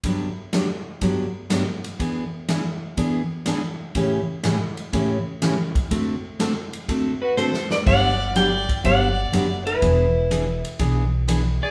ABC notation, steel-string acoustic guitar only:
X:1
M:4/4
L:1/8
Q:"Swing" 1/4=123
K:G
V:1 name="Steel-string acoustic guitar"
[G,,D,F,B,DG] z [G,,D,F,B,DG] z [G,,D,F,B,DG] z [G,,D,F,B,DG] z | [E,B,D^G] z [E,B,DG] z [E,B,DG] z [E,B,DG] z | [A,,^C,E,A,^CG] z [A,,C,E,A,CG] z [A,,C,E,A,CG] z [A,,C,E,A,CG] z | [D,A,CFA] z [D,A,CFA] z [D,A,CFA] z [D,A,CFA] z |
[D,F,B,DG] z [D,F,B,DG] z [D,F,B,DG] z [D,F,B,DG] z | [E,B,D^G] z [E,B,DG] z [E,B,DG] z [E,B,DG] z |]